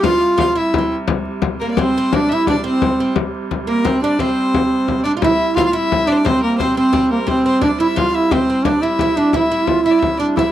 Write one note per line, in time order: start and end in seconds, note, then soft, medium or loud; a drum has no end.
0.00 1.08 C3 medium
0.00 1.08 G3 medium
0.00 0.36 F4 medium
0.00 0.35 F5 medium
0.00 frame drum medium
0.05 0.60 F4 loud
0.38 0.55 F4 medium
0.38 0.55 F5 medium
0.38 frame drum medium
0.55 0.78 E4 medium
0.55 0.97 E4 medium
0.55 0.93 E5 medium
0.55 frame drum soft
0.74 frame drum medium
0.78 0.94 C4 medium
0.92 frame drum soft
1.08 5.22 C3 medium
1.08 5.21 G3 medium
1.08 frame drum loud
1.25 frame drum soft
1.42 frame drum medium
1.60 1.79 A#3 medium
1.60 1.70 A#4 medium
1.65 1.79 A#3 medium
1.71 1.80 D5 medium
1.77 1.96 C4 medium
1.77 2.15 C5 medium
1.77 frame drum medium
1.82 2.17 C4 medium
1.95 2.12 C4 medium
1.95 frame drum soft
2.13 2.30 D4 medium
2.13 2.35 D4 medium
2.13 2.30 D5 medium
2.13 frame drum medium
2.29 2.47 E4 medium
2.29 2.46 E5 medium
2.29 frame drum soft
2.33 2.49 E4 loud
2.47 2.63 D4 medium
2.47 2.56 D4 medium
2.47 2.63 D5 medium
2.47 frame drum medium
2.64 2.99 C4 medium
2.64 3.13 C4 medium
2.64 3.12 C5 medium
2.82 frame drum medium
2.99 3.15 C4 medium
2.99 frame drum soft
3.16 frame drum medium
3.35 frame drum soft
3.51 frame drum medium
3.67 3.85 A#3 medium
3.67 3.88 A#3 medium
3.67 3.99 A#4 medium
3.85 4.02 C4 medium
3.85 4.01 C4 medium
3.85 frame drum medium
4.02 4.18 D4 medium
4.02 4.19 D4 medium
4.02 4.21 D5 medium
4.02 frame drum soft
4.19 5.01 C4 medium
4.19 5.02 C4 medium
4.19 5.03 C5 medium
4.19 frame drum medium
4.36 frame drum soft
4.54 frame drum medium
4.88 frame drum medium
5.03 5.12 D4 medium
5.03 5.16 D4 medium
5.03 5.11 D5 medium
5.17 5.23 F4 medium
5.21 9.36 C3 medium
5.21 9.36 G3 medium
5.21 5.54 E4 medium
5.21 5.55 E4 medium
5.21 5.54 E5 medium
5.21 frame drum medium
5.55 5.66 E4 medium
5.55 5.60 F4 medium
5.55 5.73 F4 medium
5.55 5.64 F5 medium
5.55 frame drum medium
5.64 5.74 F4 loud
5.64 5.72 F5 medium
5.73 6.09 E4 loud
5.73 6.07 E4 medium
5.73 6.09 E5 medium
5.92 frame drum medium
6.07 6.24 D4 medium
6.07 6.25 D4 medium
6.07 6.14 D5 medium
6.12 6.18 C5 medium
6.17 6.26 D5 medium
6.25 6.59 C4 medium
6.25 6.42 C4 medium
6.25 6.41 C5 medium
6.25 frame drum medium
6.42 6.59 A#3 medium
6.42 6.57 A#4 medium
6.58 6.76 C4 medium
6.58 6.75 C5 medium
6.58 frame drum medium
6.76 7.09 C4 medium
6.76 6.91 C4 medium
6.76 7.08 C5 medium
6.93 7.25 C4 medium
6.93 frame drum medium
7.10 7.19 A#3 medium
7.10 7.28 A#4 medium
7.27 7.44 C4 medium
7.27 7.60 C4 medium
7.27 7.44 C5 medium
7.27 frame drum medium
7.45 7.61 C4 medium
7.45 7.61 C5 medium
7.61 7.80 D4 medium
7.61 7.71 D4 medium
7.61 7.78 D5 medium
7.61 frame drum medium
7.79 7.88 E4 medium
7.79 7.96 E4 medium
7.79 7.98 E5 medium
7.96 8.31 F4 medium
7.96 8.13 F4 medium
7.96 8.16 F5 medium
7.96 frame drum medium
8.14 8.34 E4 medium
8.14 8.32 E5 medium
8.31 8.48 C4 medium
8.31 8.67 C4 medium
8.31 8.65 C5 medium
8.31 frame drum medium
8.50 8.65 C4 medium
8.65 8.83 D4 medium
8.65 8.84 D4 medium
8.65 8.83 D5 medium
8.65 frame drum medium
8.82 9.19 E4 medium
8.82 9.00 E4 medium
8.82 9.33 E5 medium
8.99 9.17 E4 medium
8.99 frame drum medium
9.17 9.34 D4 medium
9.17 9.35 D4 medium
9.33 10.52 C3 medium
9.33 10.52 G3 medium
9.33 9.50 E4 medium
9.33 9.70 E4 medium
9.33 9.82 E5 medium
9.33 frame drum medium
9.52 9.85 E4 medium
9.67 9.82 F4 medium
9.67 frame drum medium
9.83 10.16 E4 medium
9.83 10.19 E4 medium
9.83 9.93 E5 medium
9.91 10.00 D5 medium
9.99 10.18 E5 medium
9.99 frame drum medium
10.18 10.36 D4 medium
10.18 10.37 D4 medium
10.18 10.26 D5 medium
10.36 10.41 E4 medium
10.36 10.52 E4 medium
10.36 10.52 E5 medium
10.36 frame drum medium
10.45 10.52 E4 medium